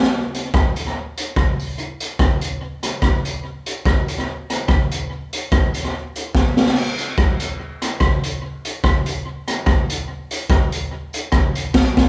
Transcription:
0.03 snare
0.34 closed hi-hat, tambourine
0.54 kick, cross-stick
0.76 closed hi-hat, tambourine
0.87 cross-stick
1.17 closed hi-hat, tambourine
1.36 kick, cross-stick
1.59 open hi-hat, tambourine
1.77 hi-hat pedal
2.00 closed hi-hat, tambourine
2.19 kick, cross-stick
2.41 closed hi-hat, tambourine
2.83 cross-stick, closed hi-hat, tambourine
3.02 kick, cross-stick
3.25 closed hi-hat, tambourine
3.66 closed hi-hat, tambourine
3.85 kick, cross-stick
4.08 closed hi-hat, tambourine
4.18 cross-stick
4.50 cross-stick, closed hi-hat, tambourine
4.68 kick, cross-stick
4.91 closed hi-hat, tambourine
5.33 closed hi-hat, tambourine
5.52 kick, cross-stick
5.74 closed hi-hat, tambourine
5.85 cross-stick
6.16 closed hi-hat, tambourine
6.35 kick, snare
6.57 snare, tambourine
6.66 snare
6.76 crash
6.98 closed hi-hat, tambourine
7.18 kick, cross-stick
7.40 closed hi-hat, tambourine
7.82 cross-stick, closed hi-hat, tambourine
8.00 kick, cross-stick
8.23 closed hi-hat, tambourine
8.65 closed hi-hat, tambourine
8.84 kick, cross-stick
9.06 closed hi-hat, tambourine
9.48 cross-stick, closed hi-hat, tambourine
9.66 kick, cross-stick
9.90 closed hi-hat, tambourine
10.31 closed hi-hat, tambourine
10.50 kick, cross-stick
10.72 closed hi-hat, tambourine
11.13 closed hi-hat, tambourine
11.32 kick, cross-stick
11.55 closed hi-hat, tambourine
11.74 kick, snare, crash
11.97 kick, snare

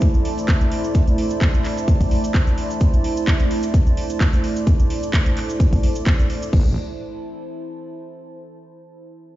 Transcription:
Already playing: A3 E4 C5 D5 A5
0.01 kick, closed hi-hat, cabasa
0.14 cabasa
0.25 open hi-hat
0.38 closed hi-hat, cabasa
0.48 kick, clap, closed hi-hat, cabasa
0.61 closed hi-hat, cabasa
0.72 open hi-hat
0.84 closed hi-hat, cabasa
0.95 kick, closed hi-hat, cabasa
1.07 closed hi-hat, cabasa
1.18 open hi-hat
1.30 closed hi-hat, cabasa
1.41 kick, clap, closed hi-hat, cabasa
1.54 cabasa
1.65 clap, open hi-hat
1.77 closed hi-hat, cabasa
1.88 kick, closed hi-hat, cabasa
2.01 kick, open hi-hat, cabasa
2.11 open hi-hat
2.24 closed hi-hat, cabasa
2.34 kick, clap, closed hi-hat, cabasa
2.47 closed hi-hat, cabasa
2.58 open hi-hat
2.70 closed hi-hat, cabasa
2.80 kick, closed hi-hat, cabasa
2.94 closed hi-hat, cabasa
3.04 open hi-hat
3.17 closed hi-hat, cabasa
3.27 kick, clap, closed hi-hat, cabasa
3.39 cabasa
3.51 open hi-hat
3.63 closed hi-hat, cabasa
3.74 kick, closed hi-hat, cabasa
3.87 cabasa
3.97 open hi-hat
4.10 closed hi-hat, cabasa
4.20 kick, clap, closed hi-hat, cabasa
4.33 closed hi-hat, cabasa
4.44 open hi-hat
4.56 closed hi-hat, cabasa
4.67 kick, closed hi-hat, cabasa
4.79 closed hi-hat, cabasa
4.90 open hi-hat
5.03 closed hi-hat, cabasa
5.13 kick, clap, closed hi-hat, cabasa
5.26 closed hi-hat, cabasa
5.37 clap, open hi-hat
5.50 closed hi-hat, cabasa
5.60 kick, closed hi-hat, cabasa
5.73 kick, open hi-hat, cabasa
5.83 open hi-hat
5.95 closed hi-hat, cabasa
6.06 kick, clap, closed hi-hat, cabasa
6.19 closed hi-hat, cabasa
6.30 open hi-hat
6.42 closed hi-hat, cabasa
6.53 A1 E4, kick, crash
6.61 C5
6.68 A5

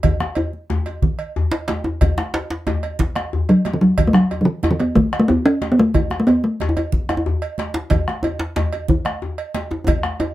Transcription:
0.03 bombo rim, bombo low, cowbell, low conga, djembe bass
0.20 bombo rim, djembe slap, high conga
0.35 cowbell, djembe tone
0.53 high conga
0.70 bombo rim, djembe slap, high conga, djembe bass
0.86 cowbell, djembe tone
1.02 bombo low, high conga, low conga
1.19 cowbell
1.36 djembe tone, djembe bass
1.51 cowbell, djembe slap
1.68 cowbell, djembe slap, high conga
1.84 djembe tone
2.01 bombo rim, bombo low, cowbell, low conga, djembe bass
2.18 bombo rim, djembe slap, high conga
2.34 cowbell, djembe slap, djembe tone
2.50 djembe slap, high conga
2.67 cowbell, djembe slap, djembe tone, high conga, djembe bass
2.83 cowbell, djembe tone
2.99 bombo low, djembe slap, low conga
3.16 bombo rim, cowbell, djembe slap, high conga
3.33 djembe slap, djembe tone, djembe bass
3.49 F#3, cowbell
3.65 cowbell, djembe slap, high conga
3.74 E3
3.81 F#3, bombo rim, djembe tone
3.98 bombo rim, bombo low, cowbell, low conga, djembe bass
4.07 A3
4.13 F#3, bombo rim, djembe slap, high conga
4.31 cowbell, djembe tone
4.41 F#3
4.45 E3, high conga
4.63 bombo rim, cowbell, djembe slap, high conga, djembe bass
4.71 E3
4.80 B3, cowbell, djembe tone
4.95 A3, bombo low, high conga, low conga
5.13 bombo rim, cowbell, djembe slap, high conga
5.20 A3
5.28 B3, djembe tone, djembe bass
5.46 C#4, cowbell
5.62 cowbell, djembe slap, high conga
5.72 B3
5.78 A3, djembe tone
5.94 bombo rim, bombo low, cowbell, low conga, djembe bass
6.10 bombo rim, djembe slap, high conga
6.20 A3
6.27 B3, cowbell, djembe tone
6.43 A3, high conga
6.60 cowbell, djembe slap, high conga, djembe bass
6.69 djembe tone
6.77 cowbell, djembe tone
6.92 bombo low, high conga, low conga
7.09 bombo rim, cowbell, djembe slap, djembe tone, high conga
7.17 djembe tone
7.26 djembe tone, djembe bass
7.42 cowbell
7.58 cowbell, djembe slap, high conga
7.74 djembe slap, djembe tone
7.90 bombo rim, bombo low, cowbell, djembe slap, low conga, djembe bass
8.08 bombo rim, djembe slap, high conga
8.23 cowbell, djembe tone
8.25 djembe tone
8.39 djembe slap, high conga
8.56 bombo rim, cowbell, djembe slap, high conga, djembe bass
8.73 cowbell, djembe tone
8.88 bombo low, high conga, djembe tone, low conga
9.05 bombo rim, cowbell, djembe slap, high conga
9.22 djembe tone
9.38 cowbell
9.54 cowbell, djembe slap, high conga
9.71 djembe tone
9.87 bombo low, cowbell, djembe slap, djembe tone, low conga, djembe bass
10.03 bombo rim, djembe slap, high conga
10.20 cowbell, djembe tone

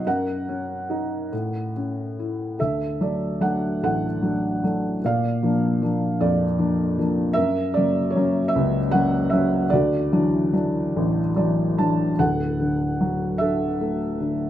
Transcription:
0.07 F#2 A#4 F#5
0.48 C#4
0.90 D#4
1.32 A2
1.76 C#4
2.19 E4
2.59 D2 A4 E5
3.01 F#3 A3 D4 D5
3.41 F#3 A3 D4 F#5
3.83 A1 A4 F#5
4.22 F#3 A3 D4
4.64 F#3 A3 D4
5.04 A#2 D5 F5
5.43 F3 A#3 D4
5.82 F3 A#3 D4
6.21 F2 D5
6.59 F3 A#3 D4
6.98 F3 A#3 D4
7.33 F#2 A#4 E5
7.74 C#3 F#3 A#3 D5
8.10 C#5
8.16 F#3 A#3 C#4
8.48 E5
8.56 C#2
8.91 F#3 A#3 C#4 F#5
9.30 F#3 A#3 C#4 E5
9.70 D2 F#4 D5
10.12 E3 F#3 D4
10.53 E3 F#3 D4
10.96 A1
11.36 E3 F#3 D4 D5
11.78 E3 F#3 D4 A5
12.19 D1 D2 A4 F#5
12.60 D3
13.01 F#3
13.38 D3 A4 E5
13.81 A3
14.20 D3

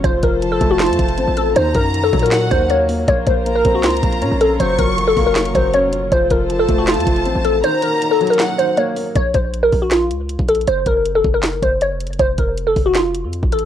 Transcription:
0.04 F1 F3 F4 A4 C5, kick, closed hi-hat
0.23 F1 F3 A#4, kick, closed hi-hat
0.42 F3 A5, closed hi-hat
0.52 A4
0.61 F1 A3, kick, closed hi-hat
0.71 F#4
0.80 F4, snare, clap, closed hi-hat
0.86 F2, closed hi-hat
0.93 closed hi-hat
0.99 F1 F3, kick, closed hi-hat
1.09 closed hi-hat
1.18 A1 C4, closed hi-hat
1.28 A1
1.37 C4 A4, closed hi-hat
1.56 D#2 D#3 A#3 C#4 F#4 C5 A#5, closed hi-hat
1.75 F#2 A#4, kick, closed hi-hat
1.94 D#3, closed hi-hat
2.04 A4
2.13 A#2 F#3, kick, closed hi-hat
2.19 A#4, closed hi-hat
2.26 closed hi-hat
2.32 F#5, snare, clap, closed hi-hat
2.51 D#2 D#3 C5, kick, closed hi-hat
2.70 A#3 C#5, closed hi-hat
2.89 A#3, open hi-hat
3.08 A#1 A#3 F4 A#4 C5 C#5, kick, closed hi-hat
3.27 A#1 A#3 C5, kick, closed hi-hat
3.46 A#3 A#5, closed hi-hat
3.55 A#4
3.65 A#1 C4, kick, closed hi-hat
3.75 F#4
3.84 C#2 F4, snare, clap, closed hi-hat
3.90 closed hi-hat
3.97 closed hi-hat
4.03 A#1 A#3, kick, closed hi-hat
4.13 closed hi-hat
4.22 A#2 C#4, closed hi-hat
4.31 A#1
4.41 C#4 A4, closed hi-hat
4.60 F#1 F#3 C#4 A#4 C5 C#6, closed hi-hat
4.79 F#1 F#3 A#4, kick, closed hi-hat
4.98 F#3, closed hi-hat
5.08 A4
5.17 F#1 A#3, kick, open hi-hat
5.26 A#4
5.36 F1, snare, clap, closed hi-hat
5.45 F#1, closed hi-hat
5.55 F#1 F#3 C5, kick, closed hi-hat
5.74 C#4 C#5, closed hi-hat
5.83 F1
5.93 C#4, closed hi-hat
5.98 F#1
6.12 F1 F3 F4 A4 C5, kick, closed hi-hat
6.30 F1 F3 A#4, kick, closed hi-hat
6.50 F3 A5, closed hi-hat
6.59 A4
6.69 F1 A3, kick, closed hi-hat
6.78 F#4
6.87 F4, snare, clap, closed hi-hat
6.94 F2, closed hi-hat
7.00 closed hi-hat
7.07 F1 F3, kick, closed hi-hat
7.16 closed hi-hat
7.25 A1 C4, closed hi-hat
7.35 A1
7.45 C4 A4, closed hi-hat
7.64 D#3 A#3 C#4 F#4 C5 A#5, closed hi-hat
7.82 D#3 A#4, closed hi-hat
8.02 D#3, closed hi-hat
8.11 A4
8.21 F#3, closed hi-hat
8.27 A#4, closed hi-hat
8.33 closed hi-hat
8.39 F#5, snare, clap, closed hi-hat
8.58 D#3 C5, closed hi-hat
8.77 A#3 C#5, closed hi-hat
8.96 A#3, open hi-hat
9.16 A#1 C#5, kick, closed hi-hat
9.34 A#1 C5, kick, closed hi-hat
9.54 closed hi-hat
9.63 A#4
9.72 A#1, kick, open hi-hat
9.82 F#4
9.91 F4, snare, clap, closed hi-hat
10.11 C#2, closed hi-hat
10.29 closed hi-hat
10.39 A#1, kick
10.48 A4, closed hi-hat, open hi-hat
10.55 closed hi-hat
10.61 closed hi-hat
10.67 F#1 C5, closed hi-hat
10.86 F#1 A#4, kick, closed hi-hat
11.06 closed hi-hat
11.15 A4
11.24 F#1, kick
11.34 A#4
11.43 F1, snare, clap, closed hi-hat
11.53 F#1
11.62 F#1 C5, kick, closed hi-hat
11.81 C#5, closed hi-hat
11.91 F1
12.00 closed hi-hat
12.05 F#1, closed hi-hat
12.13 closed hi-hat
12.19 F1 C5, kick, closed hi-hat
12.38 F1 A#4, kick, closed hi-hat
12.57 closed hi-hat
12.67 A4
12.76 F1, kick, open hi-hat
12.86 F#4
12.95 F4, snare, clap, closed hi-hat
13.15 closed hi-hat
13.24 F2
13.33 closed hi-hat
13.43 A1, kick
13.52 A4, closed hi-hat, open hi-hat
13.59 closed hi-hat

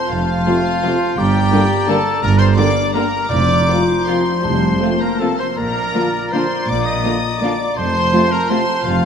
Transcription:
Already playing: C5 A5
0.10 F1 F2 F4 F5
0.46 C3 F3 A3 C4 F4
0.83 C3 F3 A3 C4 F4
1.17 G1 G2 G4 D5 G5 A#5
1.52 D3 G3 A#3 D4 A#4
1.87 D3 G3 A#3 D4 A4 A#4 A5
2.22 G1 G2 A#4 A#5
2.39 C5 C6
2.56 D3 G3 A#3 D4 A#4 D5 D6
2.94 D3 G3 A#3 D4 A#4 A#5
3.30 F1 F2 C5 D5 A#5 D6
3.68 C3 F3 A#3 C4 F4
4.07 C3 F3 A#3 C4 F4 C5 C6
4.44 F1 F2 G3 A5
4.81 C3 F3 A3 C4 F4
5.00 A#3 A#4 A#5
5.19 C3 F3 A3 C4 F4 A4 A5
5.39 C5 C6
5.56 A#1 A#2 A#4 D5 A#5
5.93 D3 F3 A#3 D4 F4
6.31 D3 F3 A#3 D4 F4 C5 C6
6.68 A#1 A#2 D5 D6
6.86 D#5 D#6
7.03 D3 F3 A#3 D4 F4
7.41 D3 F3 A#3 D4 F4 D5 D6
7.77 F1 F2 C5 A5 C6
8.12 C3 F3 A3 C4 F4
8.32 A#4 A#5
8.49 C3 F3 A3 C4 F4 C5 C6
8.85 F1 F2 F4 F5

